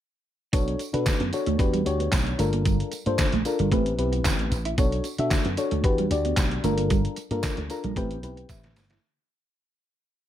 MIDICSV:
0, 0, Header, 1, 6, 480
1, 0, Start_track
1, 0, Tempo, 530973
1, 481, Time_signature, 4, 2, 24, 8
1, 9295, End_track
2, 0, Start_track
2, 0, Title_t, "FM electric piano"
2, 0, Program_c, 0, 5
2, 478, Note_on_c, 0, 62, 85
2, 479, Note_on_c, 0, 66, 73
2, 482, Note_on_c, 0, 69, 76
2, 485, Note_on_c, 0, 73, 88
2, 735, Note_off_c, 0, 62, 0
2, 736, Note_off_c, 0, 66, 0
2, 737, Note_off_c, 0, 69, 0
2, 739, Note_off_c, 0, 73, 0
2, 843, Note_on_c, 0, 62, 87
2, 847, Note_on_c, 0, 66, 76
2, 848, Note_on_c, 0, 69, 74
2, 851, Note_on_c, 0, 71, 89
2, 1100, Note_off_c, 0, 62, 0
2, 1102, Note_off_c, 0, 66, 0
2, 1102, Note_off_c, 0, 69, 0
2, 1104, Note_off_c, 0, 71, 0
2, 1203, Note_on_c, 0, 62, 77
2, 1206, Note_on_c, 0, 66, 74
2, 1207, Note_on_c, 0, 69, 73
2, 1210, Note_on_c, 0, 73, 88
2, 1427, Note_off_c, 0, 62, 0
2, 1430, Note_off_c, 0, 66, 0
2, 1437, Note_on_c, 0, 62, 87
2, 1441, Note_on_c, 0, 66, 74
2, 1444, Note_off_c, 0, 69, 0
2, 1444, Note_on_c, 0, 67, 80
2, 1444, Note_on_c, 0, 71, 92
2, 1446, Note_off_c, 0, 73, 0
2, 1634, Note_off_c, 0, 62, 0
2, 1636, Note_off_c, 0, 66, 0
2, 1637, Note_off_c, 0, 67, 0
2, 1637, Note_off_c, 0, 71, 0
2, 1678, Note_on_c, 0, 62, 85
2, 1682, Note_on_c, 0, 66, 76
2, 1683, Note_on_c, 0, 67, 73
2, 1685, Note_on_c, 0, 73, 91
2, 2145, Note_off_c, 0, 62, 0
2, 2156, Note_on_c, 0, 62, 91
2, 2160, Note_on_c, 0, 65, 86
2, 2161, Note_off_c, 0, 66, 0
2, 2162, Note_off_c, 0, 67, 0
2, 2163, Note_off_c, 0, 73, 0
2, 2163, Note_on_c, 0, 69, 85
2, 2166, Note_on_c, 0, 70, 99
2, 2639, Note_off_c, 0, 62, 0
2, 2640, Note_off_c, 0, 65, 0
2, 2642, Note_off_c, 0, 69, 0
2, 2644, Note_off_c, 0, 70, 0
2, 2767, Note_on_c, 0, 62, 87
2, 2770, Note_on_c, 0, 65, 72
2, 2771, Note_on_c, 0, 69, 75
2, 2774, Note_on_c, 0, 72, 99
2, 3022, Note_off_c, 0, 62, 0
2, 3023, Note_off_c, 0, 65, 0
2, 3024, Note_off_c, 0, 69, 0
2, 3026, Note_off_c, 0, 72, 0
2, 3124, Note_on_c, 0, 62, 82
2, 3124, Note_on_c, 0, 65, 78
2, 3128, Note_on_c, 0, 69, 77
2, 3131, Note_on_c, 0, 70, 87
2, 3361, Note_on_c, 0, 60, 87
2, 3362, Note_off_c, 0, 62, 0
2, 3362, Note_off_c, 0, 65, 0
2, 3363, Note_on_c, 0, 64, 78
2, 3364, Note_off_c, 0, 69, 0
2, 3366, Note_off_c, 0, 70, 0
2, 3366, Note_on_c, 0, 67, 76
2, 3368, Note_on_c, 0, 71, 96
2, 3556, Note_off_c, 0, 60, 0
2, 3557, Note_off_c, 0, 64, 0
2, 3558, Note_off_c, 0, 67, 0
2, 3560, Note_off_c, 0, 71, 0
2, 3601, Note_on_c, 0, 60, 80
2, 3604, Note_on_c, 0, 64, 72
2, 3605, Note_on_c, 0, 67, 75
2, 3608, Note_on_c, 0, 71, 86
2, 4113, Note_off_c, 0, 60, 0
2, 4114, Note_off_c, 0, 64, 0
2, 4115, Note_off_c, 0, 67, 0
2, 4116, Note_off_c, 0, 71, 0
2, 4324, Note_on_c, 0, 62, 84
2, 4325, Note_on_c, 0, 66, 79
2, 4329, Note_on_c, 0, 69, 77
2, 4331, Note_on_c, 0, 73, 94
2, 4579, Note_off_c, 0, 62, 0
2, 4579, Note_off_c, 0, 66, 0
2, 4581, Note_off_c, 0, 69, 0
2, 4582, Note_off_c, 0, 73, 0
2, 4690, Note_on_c, 0, 62, 90
2, 4692, Note_on_c, 0, 66, 79
2, 4694, Note_on_c, 0, 69, 77
2, 4697, Note_on_c, 0, 76, 94
2, 4943, Note_off_c, 0, 62, 0
2, 4944, Note_off_c, 0, 66, 0
2, 4946, Note_off_c, 0, 69, 0
2, 4947, Note_off_c, 0, 76, 0
2, 5040, Note_on_c, 0, 62, 84
2, 5041, Note_on_c, 0, 66, 74
2, 5045, Note_on_c, 0, 69, 78
2, 5046, Note_on_c, 0, 73, 85
2, 5268, Note_off_c, 0, 62, 0
2, 5271, Note_off_c, 0, 66, 0
2, 5279, Note_on_c, 0, 62, 81
2, 5282, Note_on_c, 0, 66, 81
2, 5283, Note_off_c, 0, 69, 0
2, 5283, Note_off_c, 0, 73, 0
2, 5285, Note_on_c, 0, 67, 78
2, 5286, Note_on_c, 0, 71, 97
2, 5475, Note_off_c, 0, 62, 0
2, 5476, Note_off_c, 0, 66, 0
2, 5478, Note_off_c, 0, 67, 0
2, 5478, Note_off_c, 0, 71, 0
2, 5522, Note_on_c, 0, 62, 85
2, 5525, Note_on_c, 0, 66, 76
2, 5528, Note_on_c, 0, 67, 76
2, 5530, Note_on_c, 0, 74, 86
2, 5989, Note_off_c, 0, 62, 0
2, 6000, Note_on_c, 0, 62, 97
2, 6003, Note_off_c, 0, 66, 0
2, 6003, Note_on_c, 0, 65, 84
2, 6004, Note_off_c, 0, 67, 0
2, 6004, Note_on_c, 0, 69, 88
2, 6006, Note_off_c, 0, 74, 0
2, 6007, Note_on_c, 0, 70, 105
2, 6481, Note_off_c, 0, 62, 0
2, 6482, Note_off_c, 0, 65, 0
2, 6482, Note_off_c, 0, 69, 0
2, 6484, Note_off_c, 0, 70, 0
2, 6608, Note_on_c, 0, 62, 83
2, 6610, Note_on_c, 0, 65, 78
2, 6611, Note_on_c, 0, 69, 74
2, 6615, Note_on_c, 0, 70, 93
2, 6862, Note_off_c, 0, 62, 0
2, 6863, Note_off_c, 0, 65, 0
2, 6864, Note_off_c, 0, 69, 0
2, 6866, Note_off_c, 0, 70, 0
2, 6962, Note_on_c, 0, 62, 81
2, 6964, Note_on_c, 0, 65, 77
2, 6965, Note_on_c, 0, 82, 69
2, 6967, Note_on_c, 0, 69, 75
2, 6970, Note_on_c, 0, 70, 90
2, 7186, Note_off_c, 0, 82, 0
2, 7201, Note_off_c, 0, 62, 0
2, 7201, Note_on_c, 0, 60, 88
2, 7202, Note_off_c, 0, 65, 0
2, 7203, Note_on_c, 0, 64, 77
2, 7204, Note_off_c, 0, 69, 0
2, 7204, Note_on_c, 0, 79, 71
2, 7205, Note_off_c, 0, 70, 0
2, 7206, Note_on_c, 0, 67, 79
2, 7209, Note_on_c, 0, 71, 93
2, 7396, Note_off_c, 0, 60, 0
2, 7397, Note_off_c, 0, 64, 0
2, 7398, Note_off_c, 0, 67, 0
2, 7400, Note_off_c, 0, 71, 0
2, 7440, Note_on_c, 0, 60, 77
2, 7443, Note_on_c, 0, 64, 73
2, 7447, Note_on_c, 0, 67, 74
2, 7447, Note_on_c, 0, 71, 89
2, 7649, Note_off_c, 0, 79, 0
2, 7683, Note_on_c, 0, 76, 69
2, 7953, Note_off_c, 0, 60, 0
2, 7954, Note_off_c, 0, 64, 0
2, 7956, Note_off_c, 0, 67, 0
2, 7956, Note_off_c, 0, 71, 0
2, 8129, Note_off_c, 0, 76, 0
2, 9295, End_track
3, 0, Start_track
3, 0, Title_t, "Clean electric guitar"
3, 0, Program_c, 1, 27
3, 485, Note_on_c, 1, 59, 89
3, 573, Note_off_c, 1, 59, 0
3, 851, Note_on_c, 1, 62, 69
3, 930, Note_off_c, 1, 62, 0
3, 1090, Note_on_c, 1, 59, 76
3, 1169, Note_off_c, 1, 59, 0
3, 1330, Note_on_c, 1, 57, 79
3, 1409, Note_off_c, 1, 57, 0
3, 1567, Note_on_c, 1, 55, 69
3, 1647, Note_off_c, 1, 55, 0
3, 1806, Note_on_c, 1, 59, 62
3, 1886, Note_off_c, 1, 59, 0
3, 2164, Note_on_c, 1, 57, 74
3, 2252, Note_off_c, 1, 57, 0
3, 2291, Note_on_c, 1, 58, 74
3, 2369, Note_off_c, 1, 58, 0
3, 2404, Note_on_c, 1, 55, 85
3, 2493, Note_off_c, 1, 55, 0
3, 2772, Note_on_c, 1, 58, 73
3, 2850, Note_off_c, 1, 58, 0
3, 3013, Note_on_c, 1, 57, 80
3, 3091, Note_off_c, 1, 57, 0
3, 3253, Note_on_c, 1, 55, 83
3, 3331, Note_off_c, 1, 55, 0
3, 3363, Note_on_c, 1, 57, 97
3, 3452, Note_off_c, 1, 57, 0
3, 3726, Note_on_c, 1, 59, 68
3, 3806, Note_off_c, 1, 59, 0
3, 3839, Note_on_c, 1, 60, 77
3, 3929, Note_off_c, 1, 60, 0
3, 4208, Note_on_c, 1, 64, 80
3, 4287, Note_off_c, 1, 64, 0
3, 4320, Note_on_c, 1, 59, 94
3, 4410, Note_off_c, 1, 59, 0
3, 4690, Note_on_c, 1, 62, 70
3, 4769, Note_off_c, 1, 62, 0
3, 4930, Note_on_c, 1, 59, 74
3, 5009, Note_off_c, 1, 59, 0
3, 5169, Note_on_c, 1, 57, 75
3, 5248, Note_off_c, 1, 57, 0
3, 5414, Note_on_c, 1, 55, 68
3, 5491, Note_off_c, 1, 55, 0
3, 5653, Note_on_c, 1, 59, 58
3, 5731, Note_off_c, 1, 59, 0
3, 6003, Note_on_c, 1, 57, 74
3, 6092, Note_off_c, 1, 57, 0
3, 6130, Note_on_c, 1, 58, 75
3, 6209, Note_off_c, 1, 58, 0
3, 6244, Note_on_c, 1, 55, 85
3, 6333, Note_off_c, 1, 55, 0
3, 6611, Note_on_c, 1, 58, 82
3, 6689, Note_off_c, 1, 58, 0
3, 6851, Note_on_c, 1, 57, 80
3, 6929, Note_off_c, 1, 57, 0
3, 7091, Note_on_c, 1, 55, 79
3, 7169, Note_off_c, 1, 55, 0
3, 7204, Note_on_c, 1, 57, 94
3, 7292, Note_off_c, 1, 57, 0
3, 7568, Note_on_c, 1, 59, 70
3, 7647, Note_off_c, 1, 59, 0
3, 7681, Note_on_c, 1, 60, 69
3, 7771, Note_off_c, 1, 60, 0
3, 8047, Note_on_c, 1, 64, 75
3, 8127, Note_off_c, 1, 64, 0
3, 9295, End_track
4, 0, Start_track
4, 0, Title_t, "Slap bass"
4, 0, Program_c, 2, 36
4, 481, Note_on_c, 2, 35, 93
4, 672, Note_off_c, 2, 35, 0
4, 849, Note_on_c, 2, 47, 100
4, 939, Note_off_c, 2, 47, 0
4, 1089, Note_on_c, 2, 42, 91
4, 1178, Note_off_c, 2, 42, 0
4, 1328, Note_on_c, 2, 38, 78
4, 1418, Note_off_c, 2, 38, 0
4, 1439, Note_on_c, 2, 40, 93
4, 1631, Note_off_c, 2, 40, 0
4, 1684, Note_on_c, 2, 38, 84
4, 1874, Note_off_c, 2, 38, 0
4, 1919, Note_on_c, 2, 35, 98
4, 2111, Note_off_c, 2, 35, 0
4, 2162, Note_on_c, 2, 31, 87
4, 2544, Note_off_c, 2, 31, 0
4, 2770, Note_on_c, 2, 43, 99
4, 2859, Note_off_c, 2, 43, 0
4, 3012, Note_on_c, 2, 34, 90
4, 3100, Note_off_c, 2, 34, 0
4, 3250, Note_on_c, 2, 31, 90
4, 3339, Note_off_c, 2, 31, 0
4, 3360, Note_on_c, 2, 33, 97
4, 3552, Note_off_c, 2, 33, 0
4, 3602, Note_on_c, 2, 35, 93
4, 3793, Note_off_c, 2, 35, 0
4, 3840, Note_on_c, 2, 33, 92
4, 4032, Note_off_c, 2, 33, 0
4, 4082, Note_on_c, 2, 33, 88
4, 4273, Note_off_c, 2, 33, 0
4, 4321, Note_on_c, 2, 35, 94
4, 4512, Note_off_c, 2, 35, 0
4, 4690, Note_on_c, 2, 47, 101
4, 4779, Note_off_c, 2, 47, 0
4, 4931, Note_on_c, 2, 42, 91
4, 5019, Note_off_c, 2, 42, 0
4, 5169, Note_on_c, 2, 38, 83
4, 5258, Note_off_c, 2, 38, 0
4, 5278, Note_on_c, 2, 40, 88
4, 5471, Note_off_c, 2, 40, 0
4, 5521, Note_on_c, 2, 38, 92
4, 5712, Note_off_c, 2, 38, 0
4, 5759, Note_on_c, 2, 35, 99
4, 5951, Note_off_c, 2, 35, 0
4, 6000, Note_on_c, 2, 31, 89
4, 6383, Note_off_c, 2, 31, 0
4, 6607, Note_on_c, 2, 43, 95
4, 6697, Note_off_c, 2, 43, 0
4, 6850, Note_on_c, 2, 38, 92
4, 6939, Note_off_c, 2, 38, 0
4, 7089, Note_on_c, 2, 34, 83
4, 7179, Note_off_c, 2, 34, 0
4, 7198, Note_on_c, 2, 33, 91
4, 7390, Note_off_c, 2, 33, 0
4, 7439, Note_on_c, 2, 35, 88
4, 7631, Note_off_c, 2, 35, 0
4, 7678, Note_on_c, 2, 33, 88
4, 7920, Note_off_c, 2, 33, 0
4, 7920, Note_on_c, 2, 31, 79
4, 8112, Note_off_c, 2, 31, 0
4, 9295, End_track
5, 0, Start_track
5, 0, Title_t, "Muted clean electric guitar strokes"
5, 723, Note_on_c, 9, 29, 42
5, 813, Note_off_c, 9, 29, 0
5, 1201, Note_on_c, 9, 29, 42
5, 1292, Note_off_c, 9, 29, 0
5, 1681, Note_on_c, 9, 29, 42
5, 1771, Note_off_c, 9, 29, 0
5, 1923, Note_on_c, 9, 29, 42
5, 2014, Note_off_c, 9, 29, 0
5, 2646, Note_on_c, 9, 29, 45
5, 2737, Note_off_c, 9, 29, 0
5, 3124, Note_on_c, 9, 29, 41
5, 3215, Note_off_c, 9, 29, 0
5, 3602, Note_on_c, 9, 29, 41
5, 3693, Note_off_c, 9, 29, 0
5, 4080, Note_on_c, 9, 29, 41
5, 4170, Note_off_c, 9, 29, 0
5, 4560, Note_on_c, 9, 29, 45
5, 4650, Note_off_c, 9, 29, 0
5, 5044, Note_on_c, 9, 29, 46
5, 5134, Note_off_c, 9, 29, 0
5, 5528, Note_on_c, 9, 29, 43
5, 5618, Note_off_c, 9, 29, 0
5, 5767, Note_on_c, 9, 29, 44
5, 5857, Note_off_c, 9, 29, 0
5, 6484, Note_on_c, 9, 29, 44
5, 6574, Note_off_c, 9, 29, 0
5, 6964, Note_on_c, 9, 29, 41
5, 7055, Note_off_c, 9, 29, 0
5, 7445, Note_on_c, 9, 29, 42
5, 7536, Note_off_c, 9, 29, 0
5, 7922, Note_on_c, 9, 29, 38
5, 8013, Note_off_c, 9, 29, 0
5, 9295, End_track
6, 0, Start_track
6, 0, Title_t, "Drums"
6, 480, Note_on_c, 9, 42, 94
6, 481, Note_on_c, 9, 36, 112
6, 482, Note_on_c, 9, 54, 44
6, 570, Note_off_c, 9, 42, 0
6, 571, Note_off_c, 9, 36, 0
6, 573, Note_off_c, 9, 54, 0
6, 612, Note_on_c, 9, 42, 48
6, 703, Note_off_c, 9, 42, 0
6, 718, Note_on_c, 9, 42, 50
6, 726, Note_on_c, 9, 54, 51
6, 808, Note_off_c, 9, 42, 0
6, 816, Note_off_c, 9, 54, 0
6, 848, Note_on_c, 9, 42, 55
6, 939, Note_off_c, 9, 42, 0
6, 958, Note_on_c, 9, 54, 86
6, 961, Note_on_c, 9, 36, 121
6, 962, Note_on_c, 9, 42, 85
6, 963, Note_on_c, 9, 39, 81
6, 964, Note_on_c, 9, 38, 103
6, 1048, Note_off_c, 9, 54, 0
6, 1052, Note_off_c, 9, 36, 0
6, 1052, Note_off_c, 9, 42, 0
6, 1054, Note_off_c, 9, 38, 0
6, 1054, Note_off_c, 9, 39, 0
6, 1085, Note_on_c, 9, 42, 52
6, 1175, Note_off_c, 9, 42, 0
6, 1200, Note_on_c, 9, 42, 64
6, 1203, Note_on_c, 9, 54, 51
6, 1290, Note_off_c, 9, 42, 0
6, 1293, Note_off_c, 9, 54, 0
6, 1324, Note_on_c, 9, 42, 54
6, 1415, Note_off_c, 9, 42, 0
6, 1437, Note_on_c, 9, 54, 29
6, 1438, Note_on_c, 9, 36, 109
6, 1444, Note_on_c, 9, 42, 86
6, 1528, Note_off_c, 9, 54, 0
6, 1529, Note_off_c, 9, 36, 0
6, 1534, Note_off_c, 9, 42, 0
6, 1569, Note_on_c, 9, 42, 54
6, 1660, Note_off_c, 9, 42, 0
6, 1683, Note_on_c, 9, 42, 74
6, 1683, Note_on_c, 9, 54, 30
6, 1773, Note_off_c, 9, 42, 0
6, 1773, Note_off_c, 9, 54, 0
6, 1809, Note_on_c, 9, 42, 48
6, 1900, Note_off_c, 9, 42, 0
6, 1915, Note_on_c, 9, 42, 96
6, 1919, Note_on_c, 9, 36, 106
6, 1921, Note_on_c, 9, 54, 80
6, 1923, Note_on_c, 9, 39, 88
6, 1924, Note_on_c, 9, 38, 120
6, 2005, Note_off_c, 9, 42, 0
6, 2009, Note_off_c, 9, 36, 0
6, 2011, Note_off_c, 9, 54, 0
6, 2014, Note_off_c, 9, 38, 0
6, 2014, Note_off_c, 9, 39, 0
6, 2048, Note_on_c, 9, 42, 40
6, 2138, Note_off_c, 9, 42, 0
6, 2160, Note_on_c, 9, 42, 69
6, 2163, Note_on_c, 9, 54, 56
6, 2251, Note_off_c, 9, 42, 0
6, 2253, Note_off_c, 9, 54, 0
6, 2285, Note_on_c, 9, 42, 60
6, 2376, Note_off_c, 9, 42, 0
6, 2400, Note_on_c, 9, 42, 98
6, 2401, Note_on_c, 9, 36, 113
6, 2403, Note_on_c, 9, 54, 46
6, 2490, Note_off_c, 9, 42, 0
6, 2491, Note_off_c, 9, 36, 0
6, 2493, Note_off_c, 9, 54, 0
6, 2532, Note_on_c, 9, 42, 51
6, 2623, Note_off_c, 9, 42, 0
6, 2636, Note_on_c, 9, 42, 51
6, 2645, Note_on_c, 9, 54, 52
6, 2726, Note_off_c, 9, 42, 0
6, 2735, Note_off_c, 9, 54, 0
6, 2767, Note_on_c, 9, 42, 57
6, 2857, Note_off_c, 9, 42, 0
6, 2877, Note_on_c, 9, 54, 79
6, 2880, Note_on_c, 9, 42, 88
6, 2882, Note_on_c, 9, 36, 114
6, 2882, Note_on_c, 9, 38, 104
6, 2882, Note_on_c, 9, 39, 88
6, 2967, Note_off_c, 9, 54, 0
6, 2970, Note_off_c, 9, 42, 0
6, 2972, Note_off_c, 9, 36, 0
6, 2972, Note_off_c, 9, 39, 0
6, 2973, Note_off_c, 9, 38, 0
6, 3005, Note_on_c, 9, 42, 52
6, 3095, Note_off_c, 9, 42, 0
6, 3120, Note_on_c, 9, 42, 65
6, 3121, Note_on_c, 9, 54, 53
6, 3210, Note_off_c, 9, 42, 0
6, 3211, Note_off_c, 9, 54, 0
6, 3246, Note_on_c, 9, 42, 55
6, 3337, Note_off_c, 9, 42, 0
6, 3359, Note_on_c, 9, 36, 106
6, 3363, Note_on_c, 9, 42, 85
6, 3449, Note_off_c, 9, 36, 0
6, 3454, Note_off_c, 9, 42, 0
6, 3489, Note_on_c, 9, 42, 54
6, 3580, Note_off_c, 9, 42, 0
6, 3603, Note_on_c, 9, 42, 75
6, 3694, Note_off_c, 9, 42, 0
6, 3730, Note_on_c, 9, 42, 49
6, 3821, Note_off_c, 9, 42, 0
6, 3838, Note_on_c, 9, 42, 103
6, 3840, Note_on_c, 9, 36, 106
6, 3842, Note_on_c, 9, 54, 81
6, 3846, Note_on_c, 9, 39, 89
6, 3847, Note_on_c, 9, 38, 115
6, 3928, Note_off_c, 9, 42, 0
6, 3931, Note_off_c, 9, 36, 0
6, 3932, Note_off_c, 9, 54, 0
6, 3937, Note_off_c, 9, 38, 0
6, 3937, Note_off_c, 9, 39, 0
6, 3970, Note_on_c, 9, 42, 42
6, 4061, Note_off_c, 9, 42, 0
6, 4082, Note_on_c, 9, 54, 56
6, 4083, Note_on_c, 9, 42, 73
6, 4172, Note_off_c, 9, 54, 0
6, 4174, Note_off_c, 9, 42, 0
6, 4206, Note_on_c, 9, 42, 61
6, 4297, Note_off_c, 9, 42, 0
6, 4320, Note_on_c, 9, 42, 97
6, 4321, Note_on_c, 9, 36, 123
6, 4322, Note_on_c, 9, 54, 46
6, 4410, Note_off_c, 9, 42, 0
6, 4412, Note_off_c, 9, 36, 0
6, 4413, Note_off_c, 9, 54, 0
6, 4451, Note_on_c, 9, 42, 48
6, 4542, Note_off_c, 9, 42, 0
6, 4556, Note_on_c, 9, 42, 49
6, 4566, Note_on_c, 9, 54, 53
6, 4646, Note_off_c, 9, 42, 0
6, 4656, Note_off_c, 9, 54, 0
6, 4687, Note_on_c, 9, 42, 57
6, 4777, Note_off_c, 9, 42, 0
6, 4799, Note_on_c, 9, 54, 82
6, 4800, Note_on_c, 9, 42, 84
6, 4801, Note_on_c, 9, 36, 118
6, 4802, Note_on_c, 9, 38, 106
6, 4802, Note_on_c, 9, 39, 81
6, 4889, Note_off_c, 9, 54, 0
6, 4890, Note_off_c, 9, 42, 0
6, 4892, Note_off_c, 9, 36, 0
6, 4892, Note_off_c, 9, 39, 0
6, 4893, Note_off_c, 9, 38, 0
6, 4924, Note_on_c, 9, 42, 57
6, 5015, Note_off_c, 9, 42, 0
6, 5039, Note_on_c, 9, 42, 63
6, 5041, Note_on_c, 9, 54, 51
6, 5129, Note_off_c, 9, 42, 0
6, 5132, Note_off_c, 9, 54, 0
6, 5165, Note_on_c, 9, 42, 56
6, 5255, Note_off_c, 9, 42, 0
6, 5278, Note_on_c, 9, 36, 108
6, 5282, Note_on_c, 9, 42, 84
6, 5368, Note_off_c, 9, 36, 0
6, 5373, Note_off_c, 9, 42, 0
6, 5409, Note_on_c, 9, 42, 56
6, 5499, Note_off_c, 9, 42, 0
6, 5522, Note_on_c, 9, 42, 76
6, 5523, Note_on_c, 9, 54, 31
6, 5612, Note_off_c, 9, 42, 0
6, 5613, Note_off_c, 9, 54, 0
6, 5649, Note_on_c, 9, 42, 45
6, 5739, Note_off_c, 9, 42, 0
6, 5754, Note_on_c, 9, 42, 102
6, 5758, Note_on_c, 9, 36, 106
6, 5761, Note_on_c, 9, 54, 85
6, 5763, Note_on_c, 9, 38, 106
6, 5763, Note_on_c, 9, 39, 91
6, 5845, Note_off_c, 9, 42, 0
6, 5849, Note_off_c, 9, 36, 0
6, 5851, Note_off_c, 9, 54, 0
6, 5853, Note_off_c, 9, 39, 0
6, 5854, Note_off_c, 9, 38, 0
6, 5889, Note_on_c, 9, 42, 44
6, 5979, Note_off_c, 9, 42, 0
6, 6001, Note_on_c, 9, 42, 71
6, 6003, Note_on_c, 9, 54, 53
6, 6091, Note_off_c, 9, 42, 0
6, 6093, Note_off_c, 9, 54, 0
6, 6126, Note_on_c, 9, 42, 62
6, 6216, Note_off_c, 9, 42, 0
6, 6241, Note_on_c, 9, 36, 119
6, 6241, Note_on_c, 9, 42, 97
6, 6241, Note_on_c, 9, 54, 45
6, 6331, Note_off_c, 9, 42, 0
6, 6332, Note_off_c, 9, 36, 0
6, 6332, Note_off_c, 9, 54, 0
6, 6372, Note_on_c, 9, 42, 52
6, 6462, Note_off_c, 9, 42, 0
6, 6477, Note_on_c, 9, 42, 52
6, 6483, Note_on_c, 9, 54, 49
6, 6567, Note_off_c, 9, 42, 0
6, 6573, Note_off_c, 9, 54, 0
6, 6607, Note_on_c, 9, 42, 56
6, 6697, Note_off_c, 9, 42, 0
6, 6715, Note_on_c, 9, 54, 84
6, 6721, Note_on_c, 9, 36, 114
6, 6721, Note_on_c, 9, 42, 82
6, 6722, Note_on_c, 9, 39, 84
6, 6723, Note_on_c, 9, 38, 102
6, 6805, Note_off_c, 9, 54, 0
6, 6811, Note_off_c, 9, 42, 0
6, 6812, Note_off_c, 9, 36, 0
6, 6813, Note_off_c, 9, 38, 0
6, 6813, Note_off_c, 9, 39, 0
6, 6844, Note_on_c, 9, 42, 54
6, 6934, Note_off_c, 9, 42, 0
6, 6958, Note_on_c, 9, 42, 68
6, 6961, Note_on_c, 9, 54, 54
6, 7048, Note_off_c, 9, 42, 0
6, 7051, Note_off_c, 9, 54, 0
6, 7085, Note_on_c, 9, 42, 51
6, 7176, Note_off_c, 9, 42, 0
6, 7198, Note_on_c, 9, 36, 110
6, 7202, Note_on_c, 9, 42, 88
6, 7288, Note_off_c, 9, 36, 0
6, 7293, Note_off_c, 9, 42, 0
6, 7329, Note_on_c, 9, 42, 57
6, 7419, Note_off_c, 9, 42, 0
6, 7442, Note_on_c, 9, 42, 74
6, 7444, Note_on_c, 9, 54, 29
6, 7532, Note_off_c, 9, 42, 0
6, 7534, Note_off_c, 9, 54, 0
6, 7570, Note_on_c, 9, 42, 49
6, 7660, Note_off_c, 9, 42, 0
6, 7675, Note_on_c, 9, 42, 104
6, 7678, Note_on_c, 9, 36, 106
6, 7681, Note_on_c, 9, 54, 84
6, 7684, Note_on_c, 9, 38, 55
6, 7765, Note_off_c, 9, 42, 0
6, 7769, Note_off_c, 9, 36, 0
6, 7771, Note_off_c, 9, 54, 0
6, 7774, Note_off_c, 9, 38, 0
6, 7807, Note_on_c, 9, 42, 43
6, 7811, Note_on_c, 9, 38, 56
6, 7897, Note_off_c, 9, 42, 0
6, 7901, Note_off_c, 9, 38, 0
6, 7920, Note_on_c, 9, 46, 67
6, 7922, Note_on_c, 9, 54, 57
6, 7924, Note_on_c, 9, 38, 85
6, 8011, Note_off_c, 9, 46, 0
6, 8013, Note_off_c, 9, 54, 0
6, 8014, Note_off_c, 9, 38, 0
6, 8044, Note_on_c, 9, 42, 59
6, 8051, Note_on_c, 9, 38, 92
6, 8135, Note_off_c, 9, 42, 0
6, 8141, Note_off_c, 9, 38, 0
6, 9295, End_track
0, 0, End_of_file